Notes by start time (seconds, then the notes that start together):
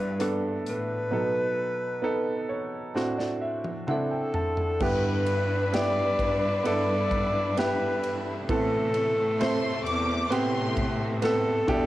Already playing: G2 B3 D4 E4 G4 B4
0.19 B3 D4 A4, cross-stick, closed hi-hat
0.66 A2 B4, closed hi-hat
1.11 B2 F#3 B3 D#4 A4
2.02 B3 D#4 A4
2.49 C#5
2.95 A2 C4 D4 F#4 C5, snare
3.19 D5, snare
3.41 E5
3.64 high tom
3.87 C4 D4 E4 A4 F#5, mid tom
4.11 G5
4.34 A5, floor tom
4.57 floor tom
4.80 G2 D3 G3 B3 D4 E4 G4 B4, kick, crash
5.26 ride
5.72 B3 E4 G4 D5, snare, ride
6.19 G2, kick, ride
6.64 G2 B3 E4 A4 D5, ride
7.11 kick, ride
7.57 B3 E4 G4 B4, snare, ride
8.03 G2, ride
8.49 A2 C3 E3 A3 B3 C4 A4, kick, ride
8.94 ride
9.18 A2
9.39 A3 C4 C5 C6, snare, ride
9.86 E2 D6, ride
10.30 A2 B3 C4 G4 C6, ride
10.77 kick, ride
11.22 B3 C4 A4, snare, ride
11.68 E2 B2 E3 G3 D4 E4 G4, kick, ride